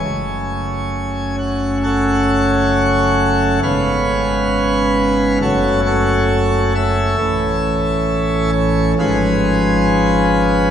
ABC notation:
X:1
M:4/4
L:1/8
Q:1/4=67
K:F#dor
V:1 name="Pipe organ"
[cg]3 f [Acf]4 | [Bc^e]4 [FAc] [FAc]2 [Ac=e]- | [K:A] [Ace]3 c [^EGB]4 |]
V:2 name="Pipe organ" clef=bass
[F,,,F,,C,A,C]8 | [G,,,G,,C,B,C]4 [F,,,F,,F,A,C]4 | [K:A] [A,,,A,,E,A,C]4 [G,,,G,,^E,C]4 |]